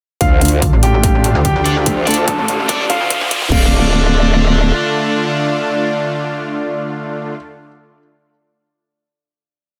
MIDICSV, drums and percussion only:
0, 0, Header, 1, 2, 480
1, 0, Start_track
1, 0, Key_signature, -1, "minor"
1, 0, Tempo, 413793
1, 240, Time_signature, 4, 2, 24, 8
1, 11363, End_track
2, 0, Start_track
2, 0, Title_t, "Drums"
2, 240, Note_on_c, 9, 36, 89
2, 241, Note_on_c, 9, 42, 79
2, 356, Note_off_c, 9, 36, 0
2, 357, Note_off_c, 9, 42, 0
2, 481, Note_on_c, 9, 42, 46
2, 523, Note_off_c, 9, 42, 0
2, 523, Note_on_c, 9, 42, 67
2, 561, Note_off_c, 9, 42, 0
2, 561, Note_on_c, 9, 42, 76
2, 677, Note_off_c, 9, 42, 0
2, 721, Note_on_c, 9, 36, 89
2, 721, Note_on_c, 9, 42, 80
2, 837, Note_off_c, 9, 36, 0
2, 837, Note_off_c, 9, 42, 0
2, 960, Note_on_c, 9, 42, 55
2, 1076, Note_off_c, 9, 42, 0
2, 1200, Note_on_c, 9, 36, 98
2, 1200, Note_on_c, 9, 42, 76
2, 1316, Note_off_c, 9, 36, 0
2, 1316, Note_off_c, 9, 42, 0
2, 1440, Note_on_c, 9, 42, 57
2, 1556, Note_off_c, 9, 42, 0
2, 1680, Note_on_c, 9, 42, 79
2, 1681, Note_on_c, 9, 36, 100
2, 1796, Note_off_c, 9, 42, 0
2, 1797, Note_off_c, 9, 36, 0
2, 1920, Note_on_c, 9, 42, 51
2, 2036, Note_off_c, 9, 42, 0
2, 2160, Note_on_c, 9, 42, 79
2, 2161, Note_on_c, 9, 36, 100
2, 2276, Note_off_c, 9, 42, 0
2, 2277, Note_off_c, 9, 36, 0
2, 2401, Note_on_c, 9, 42, 49
2, 2443, Note_off_c, 9, 42, 0
2, 2443, Note_on_c, 9, 42, 65
2, 2481, Note_off_c, 9, 42, 0
2, 2481, Note_on_c, 9, 42, 77
2, 2597, Note_off_c, 9, 42, 0
2, 2641, Note_on_c, 9, 36, 108
2, 2641, Note_on_c, 9, 42, 80
2, 2757, Note_off_c, 9, 36, 0
2, 2757, Note_off_c, 9, 42, 0
2, 2881, Note_on_c, 9, 42, 54
2, 2997, Note_off_c, 9, 42, 0
2, 3121, Note_on_c, 9, 36, 113
2, 3121, Note_on_c, 9, 42, 78
2, 3237, Note_off_c, 9, 36, 0
2, 3237, Note_off_c, 9, 42, 0
2, 3361, Note_on_c, 9, 36, 102
2, 3361, Note_on_c, 9, 42, 54
2, 3477, Note_off_c, 9, 36, 0
2, 3477, Note_off_c, 9, 42, 0
2, 3601, Note_on_c, 9, 36, 107
2, 3601, Note_on_c, 9, 42, 82
2, 3717, Note_off_c, 9, 36, 0
2, 3717, Note_off_c, 9, 42, 0
2, 3727, Note_on_c, 9, 36, 98
2, 3841, Note_off_c, 9, 36, 0
2, 3841, Note_on_c, 9, 36, 102
2, 3841, Note_on_c, 9, 42, 54
2, 3957, Note_off_c, 9, 36, 0
2, 3957, Note_off_c, 9, 42, 0
2, 3967, Note_on_c, 9, 36, 96
2, 4081, Note_off_c, 9, 36, 0
2, 4081, Note_on_c, 9, 36, 111
2, 4081, Note_on_c, 9, 49, 89
2, 4197, Note_off_c, 9, 36, 0
2, 4197, Note_off_c, 9, 49, 0
2, 11363, End_track
0, 0, End_of_file